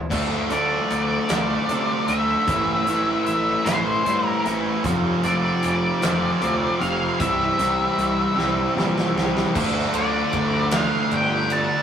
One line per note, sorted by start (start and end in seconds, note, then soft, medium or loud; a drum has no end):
0.00 0.11 G3 medium
0.00 0.11 C4 medium
0.00 0.11 E4 medium
0.11 0.38 D2 medium
0.11 0.49 D3 medium
0.11 0.50 A3 medium
0.11 0.49 D4 medium
0.11 0.50 F4 loud
0.11 kick loud
0.11 crash loud
0.50 0.78 D2 medium
0.50 1.28 D3 medium
0.50 1.29 A3 medium
0.50 1.28 D4 medium
0.50 1.28 F4 medium
0.50 0.90 D5 medium
0.50 closed hi-hat medium
0.90 1.18 D2 medium
0.90 2.07 D3 medium
0.90 2.07 D5 medium
0.90 closed hi-hat medium
1.29 1.57 D2 medium
1.29 1.68 D3 medium
1.29 1.69 A3 loud
1.29 1.69 D4 loud
1.29 1.69 F4 loud
1.29 snare loud
1.29 closed hi-hat loud
1.69 1.96 C3 medium
1.69 2.07 D3 medium
1.69 2.08 A3 medium
1.69 2.08 D4 medium
1.69 2.09 F4 medium
1.69 closed hi-hat medium
2.07 2.35 D2 medium
2.07 2.46 D3 medium
2.07 2.48 A3 medium
2.07 2.46 D4 medium
2.07 2.46 F4 medium
2.07 3.24 E5 loud
2.07 closed hi-hat medium
2.47 2.75 A1 loud
2.47 2.86 A2 medium
2.47 2.87 E3 medium
2.47 2.88 A3 loud
2.47 2.88 C4 loud
2.47 2.88 E4 loud
2.47 kick loud
2.47 closed hi-hat medium
2.87 3.14 A1 medium
2.87 3.64 A2 medium
2.87 3.65 E3 medium
2.87 3.65 A3 medium
2.87 3.66 C4 medium
2.87 3.66 E4 medium
2.87 closed hi-hat medium
3.25 3.54 A1 medium
3.25 4.43 E3 medium
3.25 3.67 E5 medium
3.25 closed hi-hat medium
3.65 3.94 A1 medium
3.65 4.04 A2 loud
3.65 4.04 E3 loud
3.65 4.04 A3 loud
3.65 4.06 C4 loud
3.65 4.05 E4 loud
3.65 4.26 C5 medium
3.65 snare loud
3.65 closed hi-hat loud
4.05 4.33 G2 medium
4.05 4.43 A2 medium
4.05 4.44 E3 medium
4.05 4.44 A3 medium
4.05 4.46 C4 medium
4.05 4.45 E4 medium
4.05 closed hi-hat medium
4.26 4.50 A#4 medium
4.44 4.72 A1 medium
4.44 4.82 A2 medium
4.44 4.82 E3 medium
4.44 4.82 A3 medium
4.44 4.85 C4 medium
4.44 4.82 E4 medium
4.44 closed hi-hat medium
4.84 5.11 F1 loud
4.84 5.22 F2 loud
4.84 5.23 C3 loud
4.84 5.22 F3 loud
4.84 5.22 A3 loud
4.84 5.23 C4 loud
4.84 5.23 F4 loud
4.84 kick loud
4.84 closed hi-hat medium
5.23 5.50 F1 medium
5.23 6.01 F2 medium
5.23 6.02 C3 loud
5.23 6.00 F3 medium
5.23 6.00 A3 loud
5.23 6.02 C4 loud
5.23 6.01 F4 medium
5.23 5.63 D5 medium
5.23 closed hi-hat medium
5.63 5.90 F1 medium
5.63 6.80 D5 medium
5.63 closed hi-hat medium
6.02 6.30 F1 medium
6.02 6.40 F2 loud
6.02 6.40 C3 loud
6.02 6.40 F3 loud
6.02 6.41 A3 loud
6.02 6.40 C4 loud
6.02 6.41 F4 loud
6.02 snare loud
6.02 closed hi-hat loud
6.41 6.69 D2 medium
6.41 6.78 F2 medium
6.41 6.79 C3 medium
6.41 6.80 F3 medium
6.41 6.80 A3 medium
6.41 6.81 C4 medium
6.41 6.81 F4 medium
6.41 closed hi-hat medium
6.80 7.08 F1 medium
6.80 7.17 F2 medium
6.80 7.18 C3 medium
6.80 7.18 F3 medium
6.80 7.18 A3 medium
6.80 7.18 C4 medium
6.80 7.19 F4 medium
6.80 7.19 F5 loud
6.80 closed hi-hat medium
7.19 7.47 C2 loud
7.19 7.57 C3 loud
7.19 7.58 E3 loud
7.19 7.58 G3 loud
7.19 7.59 C4 loud
7.19 7.59 E4 loud
7.19 9.12 E5 medium
7.19 kick loud
7.19 closed hi-hat loud
7.58 7.86 C2 medium
7.58 8.37 C3 medium
7.58 8.37 E3 medium
7.58 8.37 G3 medium
7.58 8.38 C4 medium
7.58 8.38 E4 medium
7.58 closed hi-hat medium
7.98 8.25 C2 medium
7.98 closed hi-hat medium
8.38 8.65 C2 medium
8.38 8.76 C3 loud
8.38 8.77 E3 loud
8.38 8.77 G3 loud
8.38 8.78 C4 loud
8.38 8.77 E4 loud
8.38 snare medium
8.77 9.04 A#2 medium
8.77 9.15 C3 medium
8.77 9.16 E3 medium
8.77 9.16 G3 medium
8.77 9.17 C4 medium
8.77 9.17 E4 medium
8.77 snare medium
8.98 snare medium
9.15 9.42 C2 medium
9.15 9.53 C3 medium
9.15 9.54 E3 medium
9.15 9.54 G3 loud
9.15 9.54 C4 medium
9.15 9.54 E4 medium
9.15 snare medium
9.37 snare medium
9.55 9.84 D2 medium
9.55 11.82 D3 medium
9.55 11.82 A3 medium
9.55 11.82 D4 loud
9.55 11.82 F4 loud
9.55 kick loud
9.55 crash loud
9.93 10.22 D2 medium
9.93 10.74 D5 medium
9.93 ride medium
10.33 10.90 D2 medium
10.33 kick medium
10.33 ride medium
10.71 11.82 A3 medium
10.71 11.82 D4 medium
10.71 11.10 F5 medium
10.71 snare loud
10.71 ride loud
10.75 11.82 D3 medium
11.11 11.69 G1 medium
11.11 11.52 G5 loud
11.11 ride medium
11.50 11.82 A5 loud
11.50 ride medium